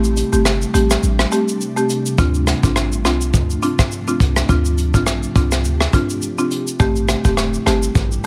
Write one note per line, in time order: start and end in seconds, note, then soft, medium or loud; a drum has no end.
0.00 0.23 A1 loud
0.00 6.76 C3 medium
0.00 2.15 G3 medium
0.00 0.29 A3 medium
0.00 6.76 A3 medium
0.00 0.29 C4 medium
0.00 2.16 D4 medium
0.00 0.29 G4 loud
0.00 2.15 G4 medium
0.04 shaker medium
0.17 closed hi-hat medium
0.17 shaker medium
0.32 0.65 G1 medium
0.32 0.44 A3 medium
0.32 0.44 C4 medium
0.32 0.44 G4 medium
0.32 shaker medium
0.45 cross-stick medium
0.45 shaker medium
0.62 shaker soft
0.74 0.97 A1 medium
0.74 0.88 A3 medium
0.74 0.88 C4 medium
0.74 0.88 G4 medium
0.74 closed hi-hat medium
0.74 shaker medium
0.91 cross-stick medium
0.91 shaker medium
1.03 1.26 A1 loud
1.03 shaker medium
1.19 cross-stick loud
1.19 shaker soft
1.32 1.46 A3 medium
1.32 1.46 C4 medium
1.32 1.46 G4 medium
1.32 closed hi-hat medium
1.32 shaker soft
1.48 shaker medium
1.61 shaker medium
1.77 1.88 A3 medium
1.77 1.88 C4 medium
1.77 1.88 G4 medium
1.77 shaker medium
1.90 closed hi-hat medium
1.90 shaker medium
2.06 shaker medium
2.18 2.54 D2 loud
2.18 6.76 F3 medium
2.18 2.59 C4 medium
2.18 2.60 D4 medium
2.18 6.76 D4 medium
2.18 4.47 F4 medium
2.18 2.60 F4 loud
2.18 kick loud
2.18 shaker medium
2.34 shaker medium
2.47 cross-stick medium
2.47 closed hi-hat medium
2.47 shaker medium
2.63 3.06 A1 medium
2.63 2.74 C4 medium
2.63 2.75 D4 medium
2.63 2.75 F4 medium
2.63 kick medium
2.63 shaker medium
2.76 cross-stick medium
2.76 shaker medium
2.92 shaker medium
3.05 3.35 C2 loud
3.05 3.19 C4 medium
3.05 3.19 D4 medium
3.05 3.19 F4 medium
3.05 cross-stick medium
3.05 closed hi-hat medium
3.05 shaker medium
3.21 shaker medium
3.34 3.56 D2 loud
3.34 kick loud
3.34 shaker medium
3.50 shaker soft
3.62 3.77 C4 medium
3.62 3.77 D4 medium
3.62 3.77 F4 medium
3.62 closed hi-hat medium
3.62 shaker medium
3.79 kick medium
3.79 cross-stick medium
3.79 shaker medium
3.92 shaker medium
4.07 4.19 C4 medium
4.07 4.19 D4 medium
4.07 4.19 F4 medium
4.07 shaker medium
4.20 4.43 C2 medium
4.20 kick medium
4.20 closed hi-hat medium
4.20 shaker medium
4.36 cross-stick medium
4.36 shaker medium
4.49 4.96 D2 loud
4.49 4.90 C4 medium
4.49 4.90 D4 medium
4.49 4.91 F4 loud
4.49 6.78 G4 medium
4.49 kick loud
4.49 shaker medium
4.65 shaker medium
4.78 closed hi-hat medium
4.78 shaker medium
4.94 5.27 A#1 medium
4.94 5.05 C4 medium
4.94 5.05 D4 medium
4.94 5.06 F4 medium
4.94 kick medium
4.94 shaker medium
5.06 cross-stick loud
5.06 shaker medium
5.23 shaker medium
5.36 5.66 C2 medium
5.36 5.50 C4 medium
5.36 5.50 D4 medium
5.36 5.50 F4 medium
5.36 kick loud
5.36 closed hi-hat medium
5.36 shaker medium
5.52 cross-stick medium
5.52 shaker medium
5.65 5.87 D2 loud
5.65 shaker medium
5.81 cross-stick loud
5.81 shaker soft
5.93 6.07 C4 medium
5.93 6.08 D4 medium
5.93 6.08 F4 medium
5.93 kick medium
5.93 closed hi-hat medium
5.93 shaker medium
6.10 shaker medium
6.22 shaker medium
6.38 6.49 C4 medium
6.38 6.50 D4 medium
6.38 6.50 F4 medium
6.38 shaker medium
6.51 closed hi-hat medium
6.51 shaker medium
6.67 shaker medium
6.80 7.15 A1 loud
6.80 8.26 C3 medium
6.80 8.26 G3 medium
6.80 7.21 A3 medium
6.80 8.26 A3 medium
6.80 7.21 C4 medium
6.80 8.26 E4 medium
6.80 8.26 G4 medium
6.80 7.21 G4 loud
6.80 kick loud
6.80 shaker medium
6.96 shaker medium
7.09 cross-stick medium
7.09 closed hi-hat medium
7.09 shaker medium
7.25 7.58 E1 medium
7.25 7.36 A3 medium
7.25 7.36 C4 medium
7.25 7.36 G4 medium
7.25 kick medium
7.25 shaker medium
7.37 cross-stick medium
7.37 shaker medium
7.54 shaker soft
7.66 7.89 G1 medium
7.66 7.80 A3 medium
7.66 7.81 C4 medium
7.66 7.81 G4 medium
7.66 cross-stick medium
7.66 closed hi-hat medium
7.66 shaker medium
7.83 shaker medium
7.95 8.18 A1 loud
7.95 kick loud
7.95 shaker medium
8.12 shaker soft